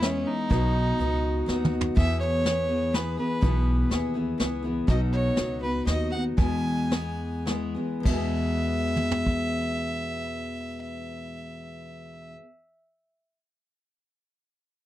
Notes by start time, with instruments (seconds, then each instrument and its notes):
Already playing: upright bass E2
0.01 steel-string acoustic guitar E3 G#3 B3 E4, fiddle C#4, snare, closed hi-hat
0.27 fiddle D#4
0.50 upright bass B1, steel-string acoustic guitar B2 F#3 B3 D#4 F#4, kick, closed hi-hat
0.98 upright bass C#2, steel-string acoustic guitar F#3 B3 D#4 F#4, closed hi-hat
1.46 upright bass D#2, steel-string acoustic guitar F#3 B3 D#4 F#4, snare
1.65 mid tom
1.81 floor tom
1.95 steel-string acoustic guitar E2 B2 E3 B3 E4 G#4, upright bass E2, fiddle E5, kick, closed hi-hat
2.20 fiddle C#5
2.43 steel-string acoustic guitar E3 B3 E4 G#4, snare, closed hi-hat
2.68 steel-string acoustic guitar E3 B3 E4 G#4
2.92 steel-string acoustic guitar E3 B3 E4 G#4, fiddle B4, snare, closed hi-hat
3.17 steel-string acoustic guitar E3 B3 E4 G#4, fiddle B4
3.41 upright bass B1, steel-string acoustic guitar E2 B2 E3 B3 E4 G#4, kick, closed hi-hat
3.90 upright bass D#2, steel-string acoustic guitar E3 B3 E4 G#4, snare, closed hi-hat
4.14 steel-string acoustic guitar E3 B3 E4 G#4
4.38 upright bass C#2, steel-string acoustic guitar E3 B3 E4 G#4, snare, closed hi-hat
4.63 steel-string acoustic guitar E3 B3 E4 G#4
4.87 upright bass B1, steel-string acoustic guitar B2 F#3 B3 D#4 F#4, fiddle D#5, kick, closed hi-hat
5.13 fiddle C#5
5.36 upright bass C#2, steel-string acoustic guitar F#3 B3 D#4 F#4, snare, closed hi-hat
5.61 steel-string acoustic guitar B3 D#4 F#4, fiddle B4
5.86 upright bass D#2, steel-string acoustic guitar F#3 B3 D#4 F#4, fiddle D#5, snare, closed hi-hat
6.11 steel-string acoustic guitar B3 D#4 F#4, fiddle F#5
6.37 steel-string acoustic guitar E2 B2 E3 G#3 B3 G#4, upright bass E2, fiddle G#5, kick, closed hi-hat
6.90 steel-string acoustic guitar E3 G#3 B3 G#4, snare, closed hi-hat
7.46 steel-string acoustic guitar E3 G#3 B3 G#4, snare, closed hi-hat
7.75 steel-string acoustic guitar E3 G#3 B3 G#4
8.00 steel-string acoustic guitar E2 B2
8.04 upright bass E2, steel-string acoustic guitar E3 G#3, fiddle E5, kick, crash
8.11 steel-string acoustic guitar B3 G#4
8.96 mid tom
9.11 floor tom
9.27 kick